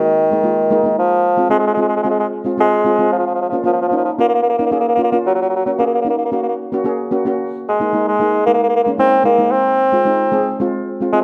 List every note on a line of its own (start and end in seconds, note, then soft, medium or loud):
0.00 0.95 D#3 medium
0.00 0.15 G#3 medium
0.00 0.15 A#3 medium
0.00 0.16 F#4 medium
0.31 0.39 G#3 medium
0.31 0.40 A#3 medium
0.31 0.40 D#4 medium
0.43 0.60 G#3 medium
0.43 0.61 A#3 medium
0.43 0.61 F4 medium
0.70 0.79 G#3 medium
0.70 0.80 A#3 medium
0.70 0.80 D#4 medium
0.84 1.16 G#3 medium
0.84 1.17 A#3 medium
0.84 1.17 D#4 medium
0.99 1.48 F3 medium
1.37 1.45 G#3 medium
1.37 1.46 C4 medium
1.37 1.46 F4 medium
1.50 1.67 G#3 medium
1.50 1.58 G#3 medium
1.50 1.68 C4 medium
1.50 1.68 F4 medium
1.59 1.66 G#3 medium
1.67 1.73 G#3 medium
1.74 1.81 G#3 medium
1.74 1.94 G#3 medium
1.74 1.95 C4 medium
1.78 1.88 G#3 medium
1.78 1.95 F4 medium
1.88 1.96 G#3 medium
1.96 2.02 G#3 medium
2.03 2.10 G#3 medium
2.03 2.29 G#3 medium
2.03 2.29 C4 medium
2.03 2.30 F4 medium
2.10 2.18 G#3 medium
2.19 2.26 G#3 medium
2.44 2.52 G#3 medium
2.44 2.53 C4 medium
2.44 2.53 F4 medium
2.57 2.74 G#3 medium
2.57 3.09 G#3 medium
2.57 2.75 C4 medium
2.57 2.75 F4 medium
2.85 2.93 G#3 medium
2.85 2.94 C4 medium
2.85 2.94 F4 medium
2.99 3.31 G#3 medium
2.99 3.31 C4 medium
2.99 3.31 F4 medium
3.12 3.18 F3 medium
3.18 3.26 F3 medium
3.26 3.33 F3 medium
3.35 3.41 F3 medium
3.41 3.48 F3 medium
3.49 3.56 F3 medium
3.49 3.60 A#3 medium
3.53 3.60 C#4 medium
3.53 3.61 F4 medium
3.64 3.72 F3 medium
3.64 3.81 A#3 medium
3.64 3.81 C#4 medium
3.64 3.82 F4 medium
3.73 3.80 F3 medium
3.81 3.88 F3 medium
3.88 3.95 F3 medium
3.88 4.08 A#3 medium
3.92 4.09 C#4 medium
3.92 4.09 D#4 medium
3.97 4.03 F3 medium
4.05 4.11 F3 medium
4.19 4.43 A#3 medium
4.19 4.27 A#3 medium
4.19 4.43 C#4 medium
4.19 4.43 F4 medium
4.29 4.33 A#3 medium
4.34 4.41 A#3 medium
4.42 4.49 A#3 medium
4.49 4.56 A#3 medium
4.58 4.64 A#3 medium
4.58 4.67 A#3 medium
4.58 4.67 C#4 medium
4.58 4.67 D#4 medium
4.66 4.71 A#3 medium
4.71 4.88 A#3 medium
4.71 4.79 A#3 medium
4.71 4.88 C#4 medium
4.71 4.89 G#4 medium
4.80 4.87 A#3 medium
4.88 4.94 A#3 medium
4.95 5.01 A#3 medium
4.95 5.06 A#3 medium
4.95 5.07 C#4 medium
4.95 5.07 F4 medium
5.04 5.10 A#3 medium
5.12 5.17 A#3 medium
5.12 5.44 A#3 medium
5.12 5.44 C#4 medium
5.12 5.45 F4 medium
5.26 5.33 F#3 medium
5.35 5.41 F#3 medium
5.41 5.48 F#3 medium
5.49 5.55 F#3 medium
5.56 5.63 F#3 medium
5.65 5.71 F#3 medium
5.65 5.74 A#3 medium
5.65 5.74 C#4 medium
5.65 5.74 F#4 medium
5.79 5.86 A#3 medium
5.79 5.95 A#3 medium
5.79 5.96 C#4 medium
5.79 5.96 G#4 medium
5.87 5.94 A#3 medium
5.94 6.01 A#3 medium
6.01 6.08 A#3 medium
6.01 6.22 A#3 medium
6.06 6.17 A#3 medium
6.06 6.22 C#4 medium
6.06 6.22 D#4 medium
6.18 6.24 A#3 soft
6.25 6.31 A#3 soft
6.32 6.56 A#3 medium
6.32 6.39 A#3 soft
6.32 6.56 C#4 medium
6.32 6.57 F#4 medium
6.42 6.48 A#3 medium
6.48 6.54 A#3 soft
6.72 6.80 A#3 medium
6.72 6.81 C#4 medium
6.72 6.81 F#4 medium
6.84 7.01 A#3 medium
6.84 7.02 C#4 medium
6.84 7.02 G#4 medium
7.11 7.20 A#3 medium
7.11 7.20 C#4 medium
7.11 7.21 F#4 medium
7.25 7.58 A#3 medium
7.25 7.58 C#4 medium
7.25 7.58 F#4 medium
7.68 8.05 G#3 medium
7.80 7.87 G#3 medium
7.80 7.88 A#3 medium
7.80 7.88 D#4 medium
7.93 8.09 G#3 medium
7.93 8.10 A#3 medium
7.93 8.10 D#4 medium
8.08 8.44 G#3 medium
8.19 8.36 G#3 medium
8.19 8.36 A#3 medium
8.19 8.37 D#4 medium
8.46 8.70 G#3 medium
8.46 8.53 A#3 medium
8.46 8.71 A#3 medium
8.46 8.71 D#4 medium
8.54 8.61 A#3 medium
8.63 8.68 A#3 medium
8.69 8.75 A#3 medium
8.75 8.83 A#3 medium
8.83 8.94 G#3 medium
8.83 8.90 A#3 medium
8.83 8.94 A#3 medium
8.88 8.95 C#4 medium
8.98 9.15 G#3 medium
8.98 9.16 A#3 medium
8.98 9.24 C4 medium
8.98 9.16 D#4 medium
9.24 9.34 G#3 medium
9.24 9.34 A#3 medium
9.24 9.53 A#3 medium
9.24 9.34 D#4 medium
9.38 9.71 G#3 medium
9.38 9.71 A#3 medium
9.38 9.72 D#4 medium
9.51 10.59 C4 medium
9.92 10.00 G#3 medium
9.92 10.01 C4 medium
9.92 10.01 F4 medium
10.05 10.22 G#3 medium
10.05 10.23 C4 medium
10.05 10.23 D#4 medium
10.32 10.49 G#3 medium
10.32 10.49 C4 medium
10.32 10.50 G#4 medium
10.60 10.84 G#3 medium
10.60 10.84 C4 medium
10.60 10.85 F4 medium
11.00 11.08 G#3 medium
11.00 11.09 C4 medium
11.00 11.09 F4 medium
11.12 11.20 G#3 medium
11.12 11.24 G#3 medium
11.12 11.24 C4 medium
11.12 11.24 F4 medium